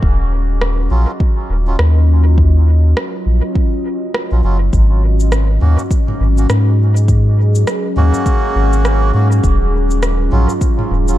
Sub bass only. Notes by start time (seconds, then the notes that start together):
0.03 D#1
0.91 A#1
1.49 D#1
1.79 D#2
3.26 A#1
4.32 A#1
4.44 F#1
4.73 G#1
5.61 D#2
6.20 G#1
6.49 G#2
7.97 D#2
8.55 G#1
9.14 G#2
9.44 D#1
10.32 A#1
10.91 D#1